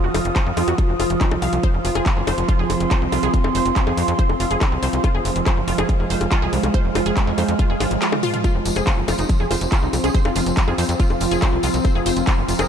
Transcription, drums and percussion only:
0.14 open hi-hat loud
0.14 high bongo medium
0.25 closed hi-hat medium
0.36 kick loud
0.36 clap loud
0.36 closed hi-hat medium
0.57 open hi-hat loud
0.57 high bongo soft
0.68 closed hi-hat medium
0.78 kick loud
0.78 closed hi-hat medium
1.00 open hi-hat loud
1.00 high bongo soft
1.10 closed hi-hat medium
1.21 kick loud
1.21 clap loud
1.21 closed hi-hat medium
1.31 high bongo medium
1.42 open hi-hat loud
1.53 closed hi-hat medium
1.63 kick loud
1.63 closed hi-hat medium
1.85 open hi-hat loud
1.95 closed hi-hat medium
1.95 high bongo soft
2.06 kick loud
2.06 clap loud
2.06 closed hi-hat medium
2.27 open hi-hat loud
2.27 high bongo medium
2.38 closed hi-hat medium
2.49 kick loud
2.49 closed hi-hat medium
2.70 open hi-hat loud
2.70 high bongo soft
2.80 closed hi-hat medium
2.91 kick loud
2.91 clap loud
2.91 closed hi-hat medium
3.12 open hi-hat loud
3.12 high bongo soft
3.23 closed hi-hat medium
3.34 kick loud
3.34 closed hi-hat medium
3.44 high bongo medium
3.55 open hi-hat loud
3.66 closed hi-hat medium
3.76 kick loud
3.76 clap loud
3.76 closed hi-hat medium
3.87 high bongo soft
3.97 open hi-hat loud
4.08 closed hi-hat medium
4.19 kick loud
4.19 closed hi-hat medium
4.29 high bongo soft
4.40 open hi-hat loud
4.51 closed hi-hat medium
4.61 kick loud
4.61 clap loud
4.61 closed hi-hat medium
4.61 high bongo medium
4.83 open hi-hat loud
4.93 closed hi-hat medium
5.04 kick loud
5.04 closed hi-hat medium
5.04 high bongo soft
5.25 open hi-hat loud
5.36 closed hi-hat medium
5.46 kick loud
5.46 clap loud
5.46 closed hi-hat medium
5.46 high bongo soft
5.68 open hi-hat loud
5.78 closed hi-hat medium
5.78 high bongo medium
5.89 kick loud
5.89 closed hi-hat medium
6.10 open hi-hat loud
6.21 closed hi-hat medium
6.21 high bongo soft
6.32 kick loud
6.32 clap loud
6.32 closed hi-hat medium
6.53 open hi-hat loud
6.63 closed hi-hat medium
6.63 high bongo soft
6.74 kick loud
6.74 closed hi-hat medium
6.95 open hi-hat loud
6.95 high bongo medium
7.06 closed hi-hat medium
7.17 kick loud
7.17 clap loud
7.17 closed hi-hat medium
7.38 open hi-hat loud
7.38 high bongo soft
7.49 closed hi-hat medium
7.59 kick loud
7.59 closed hi-hat medium
7.80 snare medium
7.80 open hi-hat loud
7.80 high bongo soft
7.91 closed hi-hat medium
8.02 snare medium
8.02 clap loud
8.02 closed hi-hat medium
8.12 mid tom medium
8.12 high bongo medium
8.23 mid tom medium
8.23 open hi-hat loud
8.34 closed hi-hat medium
8.34 mid tom medium
8.44 kick loud
8.44 closed hi-hat medium
8.44 tambourine soft
8.65 open hi-hat loud
8.65 tambourine loud
8.76 closed hi-hat medium
8.76 tambourine soft
8.76 high bongo soft
8.87 kick loud
8.87 clap loud
8.87 closed hi-hat medium
9.08 open hi-hat loud
9.08 tambourine medium
9.08 high bongo medium
9.18 closed hi-hat medium
9.18 tambourine medium
9.29 kick loud
9.29 closed hi-hat medium
9.29 tambourine soft
9.51 open hi-hat loud
9.51 tambourine medium
9.51 high bongo soft
9.61 closed hi-hat medium
9.61 tambourine medium
9.72 kick loud
9.72 clap loud
9.72 closed hi-hat medium
9.93 open hi-hat loud
9.93 tambourine medium
9.93 high bongo soft
10.04 closed hi-hat medium
10.04 tambourine medium
10.14 kick loud
10.14 closed hi-hat medium
10.14 tambourine soft
10.25 high bongo medium
10.35 open hi-hat loud
10.35 tambourine loud
10.46 closed hi-hat medium
10.46 tambourine medium
10.57 kick loud
10.57 clap loud
10.57 closed hi-hat medium
10.57 tambourine soft
10.68 high bongo soft
10.78 open hi-hat loud
10.78 tambourine loud
10.89 closed hi-hat medium
10.89 tambourine medium
11.00 kick loud
11.00 closed hi-hat medium
11.00 tambourine soft
11.10 high bongo soft
11.20 open hi-hat loud
11.20 tambourine medium
11.31 closed hi-hat medium
11.31 tambourine medium
11.41 kick loud
11.41 clap loud
11.41 closed hi-hat medium
11.41 tambourine soft
11.41 high bongo medium
11.63 open hi-hat loud
11.63 tambourine medium
11.74 closed hi-hat medium
11.74 tambourine medium
11.85 kick loud
11.85 closed hi-hat medium
11.85 tambourine soft
11.85 high bongo soft
12.06 open hi-hat loud
12.06 tambourine medium
12.16 closed hi-hat medium
12.16 tambourine medium
12.27 kick loud
12.27 clap loud
12.27 closed hi-hat medium
12.27 high bongo soft
12.48 open hi-hat loud
12.48 tambourine medium
12.59 closed hi-hat medium
12.59 tambourine medium
12.59 high bongo medium

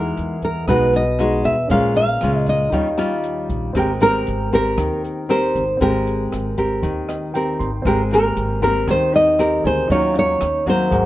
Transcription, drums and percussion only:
0.17 closed hi-hat soft
0.42 kick soft
0.42 closed hi-hat soft
0.68 kick medium
0.68 cross-stick medium
0.68 closed hi-hat soft
0.93 closed hi-hat soft
1.19 cross-stick medium
1.19 closed hi-hat soft
1.44 kick soft
1.44 closed hi-hat soft
1.70 kick soft
1.70 closed hi-hat soft
1.96 closed hi-hat soft
2.21 cross-stick medium
2.21 closed hi-hat soft
2.46 kick soft
2.46 closed hi-hat soft
2.72 kick medium
2.72 closed hi-hat soft
2.98 cross-stick medium
2.98 closed hi-hat soft
3.24 closed hi-hat soft
3.49 kick soft
3.49 closed hi-hat soft
3.75 kick soft
3.75 cross-stick soft
3.75 closed hi-hat soft
4.00 closed hi-hat soft
4.27 closed hi-hat soft
4.52 kick soft
4.52 closed hi-hat soft
4.78 kick medium
4.78 cross-stick medium
4.78 closed hi-hat soft
5.05 closed hi-hat soft
5.30 cross-stick soft
5.30 closed hi-hat soft
5.55 kick soft
5.55 closed hi-hat soft
5.81 kick soft
5.81 closed hi-hat soft
6.07 closed hi-hat soft
6.32 cross-stick medium
6.32 closed hi-hat soft
6.57 kick soft
6.57 closed hi-hat soft
6.83 kick medium
6.83 closed hi-hat soft
7.09 cross-stick medium
7.09 closed hi-hat soft
7.35 closed hi-hat soft
7.60 kick soft
7.60 closed hi-hat soft
7.85 kick soft
7.85 cross-stick soft
7.85 closed hi-hat soft
8.11 closed hi-hat soft
8.37 closed hi-hat soft
8.62 kick soft
8.62 closed hi-hat soft
8.88 kick medium
8.88 cross-stick medium
8.88 closed hi-hat soft
9.14 closed hi-hat soft
9.39 cross-stick medium
9.39 closed hi-hat soft
9.64 kick soft
9.64 closed hi-hat soft
9.90 kick soft
9.90 closed hi-hat soft
10.15 closed hi-hat soft
10.41 cross-stick medium
10.41 closed hi-hat soft
10.66 kick soft
10.66 closed hi-hat soft
10.92 kick medium
10.92 closed hi-hat soft

